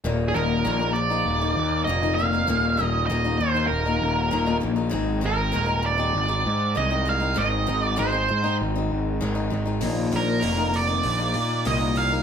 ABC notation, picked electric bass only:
X:1
M:4/4
L:1/8
Q:1/4=98
K:Ablyd
V:1 name="Picked electric bass" clef=bass
E,,, E,,, B,,,2 E,,, E,, F,,,2 | E,,, E,,, E,,, E,, E,,, E,,, E,,, B,,, | A,,, A,,, E,,,2 A,,, A,, C,,2 | A,,, A,,, A,,, A,, A,,, A,,, A,,, A,,, |
B,,, B,,, F,,,2 B,,, B,, C,,2 |]